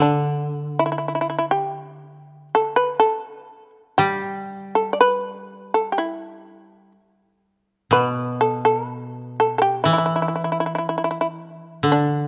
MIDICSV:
0, 0, Header, 1, 3, 480
1, 0, Start_track
1, 0, Tempo, 1022147
1, 957, Tempo, 981997
1, 1918, Time_signature, 4, 2, 24, 8
1, 5962, End_track
2, 0, Start_track
2, 0, Title_t, "Shamisen"
2, 0, Program_c, 0, 106
2, 9, Note_on_c, 0, 62, 57
2, 348, Note_off_c, 0, 62, 0
2, 373, Note_on_c, 0, 64, 58
2, 397, Note_off_c, 0, 64, 0
2, 403, Note_on_c, 0, 64, 39
2, 426, Note_off_c, 0, 64, 0
2, 432, Note_on_c, 0, 64, 42
2, 455, Note_off_c, 0, 64, 0
2, 461, Note_on_c, 0, 64, 36
2, 497, Note_off_c, 0, 64, 0
2, 508, Note_on_c, 0, 64, 43
2, 534, Note_off_c, 0, 64, 0
2, 540, Note_on_c, 0, 64, 36
2, 563, Note_off_c, 0, 64, 0
2, 569, Note_on_c, 0, 64, 45
2, 604, Note_off_c, 0, 64, 0
2, 609, Note_on_c, 0, 64, 38
2, 642, Note_off_c, 0, 64, 0
2, 650, Note_on_c, 0, 64, 45
2, 680, Note_off_c, 0, 64, 0
2, 710, Note_on_c, 0, 67, 61
2, 1174, Note_off_c, 0, 67, 0
2, 1206, Note_on_c, 0, 69, 67
2, 1309, Note_off_c, 0, 69, 0
2, 1311, Note_on_c, 0, 71, 61
2, 1423, Note_off_c, 0, 71, 0
2, 1425, Note_on_c, 0, 69, 70
2, 1770, Note_off_c, 0, 69, 0
2, 1906, Note_on_c, 0, 67, 67
2, 2258, Note_off_c, 0, 67, 0
2, 2284, Note_on_c, 0, 69, 63
2, 2365, Note_off_c, 0, 69, 0
2, 2371, Note_on_c, 0, 74, 51
2, 2404, Note_off_c, 0, 74, 0
2, 2408, Note_on_c, 0, 71, 75
2, 2746, Note_off_c, 0, 71, 0
2, 2768, Note_on_c, 0, 69, 65
2, 2846, Note_off_c, 0, 69, 0
2, 2856, Note_on_c, 0, 67, 44
2, 2884, Note_on_c, 0, 64, 57
2, 2885, Note_off_c, 0, 67, 0
2, 3341, Note_off_c, 0, 64, 0
2, 3835, Note_on_c, 0, 71, 85
2, 4056, Note_off_c, 0, 71, 0
2, 4071, Note_on_c, 0, 69, 67
2, 4183, Note_off_c, 0, 69, 0
2, 4189, Note_on_c, 0, 69, 79
2, 4291, Note_off_c, 0, 69, 0
2, 4291, Note_on_c, 0, 71, 79
2, 4533, Note_off_c, 0, 71, 0
2, 4555, Note_on_c, 0, 69, 63
2, 4637, Note_off_c, 0, 69, 0
2, 4645, Note_on_c, 0, 69, 47
2, 4660, Note_off_c, 0, 69, 0
2, 4662, Note_on_c, 0, 67, 69
2, 4768, Note_off_c, 0, 67, 0
2, 4770, Note_on_c, 0, 64, 56
2, 4810, Note_off_c, 0, 64, 0
2, 4815, Note_on_c, 0, 64, 41
2, 4834, Note_off_c, 0, 64, 0
2, 4840, Note_on_c, 0, 64, 45
2, 4871, Note_off_c, 0, 64, 0
2, 4877, Note_on_c, 0, 64, 42
2, 4916, Note_off_c, 0, 64, 0
2, 4926, Note_on_c, 0, 64, 45
2, 4951, Note_off_c, 0, 64, 0
2, 4957, Note_on_c, 0, 64, 37
2, 4981, Note_off_c, 0, 64, 0
2, 4987, Note_on_c, 0, 64, 41
2, 5017, Note_off_c, 0, 64, 0
2, 5023, Note_on_c, 0, 64, 36
2, 5060, Note_off_c, 0, 64, 0
2, 5066, Note_on_c, 0, 64, 37
2, 5097, Note_off_c, 0, 64, 0
2, 5103, Note_on_c, 0, 64, 35
2, 5136, Note_off_c, 0, 64, 0
2, 5143, Note_on_c, 0, 64, 39
2, 5166, Note_off_c, 0, 64, 0
2, 5172, Note_on_c, 0, 64, 33
2, 5206, Note_off_c, 0, 64, 0
2, 5216, Note_on_c, 0, 64, 39
2, 5226, Note_off_c, 0, 64, 0
2, 5232, Note_on_c, 0, 64, 36
2, 5271, Note_off_c, 0, 64, 0
2, 5284, Note_on_c, 0, 64, 43
2, 5316, Note_off_c, 0, 64, 0
2, 5327, Note_on_c, 0, 64, 37
2, 5353, Note_off_c, 0, 64, 0
2, 5358, Note_on_c, 0, 64, 42
2, 5385, Note_off_c, 0, 64, 0
2, 5390, Note_on_c, 0, 64, 40
2, 5423, Note_off_c, 0, 64, 0
2, 5440, Note_on_c, 0, 64, 44
2, 5466, Note_off_c, 0, 64, 0
2, 5787, Note_on_c, 0, 62, 67
2, 5962, Note_off_c, 0, 62, 0
2, 5962, End_track
3, 0, Start_track
3, 0, Title_t, "Koto"
3, 0, Program_c, 1, 107
3, 0, Note_on_c, 1, 50, 40
3, 1430, Note_off_c, 1, 50, 0
3, 1910, Note_on_c, 1, 55, 44
3, 3356, Note_off_c, 1, 55, 0
3, 3826, Note_on_c, 1, 47, 47
3, 4778, Note_on_c, 1, 52, 52
3, 4784, Note_off_c, 1, 47, 0
3, 5744, Note_on_c, 1, 50, 42
3, 5962, Note_off_c, 1, 50, 0
3, 5962, Note_off_c, 1, 52, 0
3, 5962, End_track
0, 0, End_of_file